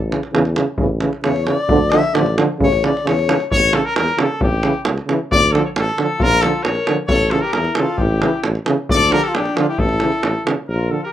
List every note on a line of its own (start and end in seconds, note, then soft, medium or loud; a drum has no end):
0.00 0.14 A1 medium
0.10 0.20 C#3 medium
0.10 0.19 E3 medium
0.10 davul high medium
0.23 davul high soft
0.32 0.59 E2 medium
0.32 0.43 C#3 medium
0.32 0.41 E3 medium
0.32 davul high medium
0.45 davul high soft
0.54 0.65 C#3 medium
0.54 0.64 E3 medium
0.54 davul high medium
0.78 1.05 A1 medium
0.78 0.88 C#3 medium
0.78 0.88 E3 medium
0.78 davul low medium
1.00 1.11 C#3 medium
1.00 1.09 E3 medium
1.00 davul high medium
1.13 davul high soft
1.23 1.50 E2 medium
1.23 1.33 C#3 medium
1.23 1.34 E3 medium
1.23 1.44 C#5 medium
1.23 davul high medium
1.36 davul high soft
1.44 1.56 C#3 medium
1.44 1.56 E3 medium
1.44 1.55 C#5 medium
1.44 davul high medium
1.55 1.92 D5 medium
1.69 1.95 D2 loud
1.69 1.79 D3 medium
1.69 1.79 F3 medium
1.69 davul low loud
1.90 2.01 D3 medium
1.90 2.01 F3 medium
1.90 2.16 E5 medium
1.90 davul high medium
2.03 davul high soft
2.14 2.40 A1 loud
2.14 2.23 D3 medium
2.14 2.25 F3 medium
2.14 2.38 D5 medium
2.14 davul high medium
2.26 davul high soft
2.37 2.46 D3 medium
2.37 2.47 F3 medium
2.37 davul high medium
2.59 2.85 A1 loud
2.59 2.68 C#3 medium
2.59 2.71 E3 medium
2.59 davul low loud
2.64 2.83 C#5 loud
2.72 davul high soft
2.83 2.92 C#3 medium
2.83 2.92 E3 medium
2.83 3.05 D5 medium
2.83 davul high medium
2.97 davul high soft
3.04 3.31 E2 medium
3.04 3.13 C#3 medium
3.04 3.15 E3 medium
3.04 davul high medium
3.08 3.49 C#5 medium
3.19 davul high soft
3.27 3.36 C#3 medium
3.27 3.38 E3 medium
3.27 davul high medium
3.40 davul high soft
3.51 3.76 A1 medium
3.51 3.76 C#5 loud
3.51 davul low loud
3.72 3.81 C#3 medium
3.72 3.83 E3 medium
3.72 3.86 A4 loud
3.72 davul high medium
3.85 3.96 A#4 loud
3.96 4.09 E2 medium
3.96 4.17 A#4 loud
3.96 davul high medium
4.08 davul high soft
4.17 4.28 C#3 medium
4.17 4.26 E3 medium
4.17 4.40 A4 medium
4.17 davul high medium
4.41 4.65 A1 loud
4.41 4.84 G4 medium
4.41 davul low loud
4.63 4.72 C#3 medium
4.63 4.73 E3 medium
4.63 davul high medium
4.85 4.99 C#2 medium
4.85 davul high medium
4.98 davul high soft
5.07 5.16 C#3 medium
5.07 5.18 E3 medium
5.07 davul high medium
5.31 5.56 D2 medium
5.31 5.54 D5 loud
5.31 davul low loud
5.52 5.62 D3 medium
5.52 5.64 F3 medium
5.52 5.61 A4 loud
5.52 davul high medium
5.65 5.67 C#5 medium
5.76 5.88 A1 medium
5.76 5.98 A4 loud
5.76 davul high medium
5.89 davul high soft
5.97 6.06 D3 medium
5.97 6.08 F3 medium
5.97 6.24 A4 loud
5.97 davul high medium
6.18 6.46 A#1 loud
6.18 6.39 F4 medium
6.18 davul low loud
6.22 6.43 A#4 loud
6.32 davul high soft
6.39 6.51 F3 medium
6.39 6.65 F4 medium
6.39 6.64 A4 loud
6.39 davul high medium
6.43 6.52 D3 medium
6.63 6.78 A#1 medium
6.63 6.98 A#4 medium
6.63 6.98 C#5 medium
6.63 davul high medium
6.75 davul high soft
6.87 6.97 D3 medium
6.87 6.98 F3 medium
6.87 davul high medium
7.07 7.35 A1 medium
7.07 7.33 A4 medium
7.07 7.32 C#5 loud
7.07 davul low loud
7.31 7.41 C#3 medium
7.31 7.43 E3 medium
7.31 7.44 F4 medium
7.31 7.42 A4 loud
7.31 davul high medium
7.41 7.54 G4 medium
7.41 7.52 A#4 medium
7.53 7.68 E2 medium
7.53 7.81 E4 medium
7.53 7.76 A#4 medium
7.53 davul high medium
7.65 davul high soft
7.75 7.85 C#3 medium
7.75 7.86 E3 medium
7.75 7.99 A4 medium
7.75 davul high medium
7.80 8.04 F4 medium
7.97 8.24 A1 loud
7.97 8.43 G4 medium
7.97 davul low medium
8.03 8.46 E4 medium
8.20 8.29 C#3 medium
8.20 8.32 E3 medium
8.20 davul high medium
8.44 8.56 A1 loud
8.44 davul high medium
8.55 davul high soft
8.66 8.75 C#3 medium
8.66 8.75 E3 medium
8.66 davul high medium
8.89 9.14 D2 loud
8.89 9.13 D5 loud
8.89 davul low loud
8.94 9.17 A4 loud
9.10 9.20 D3 medium
9.10 9.19 F3 medium
9.10 9.25 A#4 loud
9.10 davul high medium
9.16 9.30 G4 medium
9.23 9.36 A4 loud
9.28 9.38 F4 medium
9.35 9.47 A#1 medium
9.35 9.60 D4 medium
9.35 9.58 G4 medium
9.35 davul high medium
9.45 davul high soft
9.55 9.66 D3 medium
9.55 9.64 F3 medium
9.55 9.67 F4 medium
9.55 davul high medium
9.60 9.68 D4 medium
9.68 9.79 E4 medium
9.68 9.80 G4 medium
9.78 10.03 A1 loud
9.78 10.46 E4 medium
9.78 10.45 A4 loud
9.78 davul low loud
9.89 davul high soft
10.00 10.10 C#3 medium
10.00 10.09 E3 medium
10.00 davul high medium
10.12 davul high soft
10.23 10.35 A1 medium
10.23 davul high medium
10.45 10.55 C#3 medium
10.45 10.54 E3 medium
10.45 davul high medium
10.67 10.93 A#1 loud
10.67 10.92 F4 medium
10.67 10.92 A#4 medium
10.89 10.98 D3 medium
10.89 10.99 F3 medium
10.89 11.02 F4 soft
10.89 11.01 A4 medium
11.03 11.09 G4 medium
11.03 11.08 A#4 medium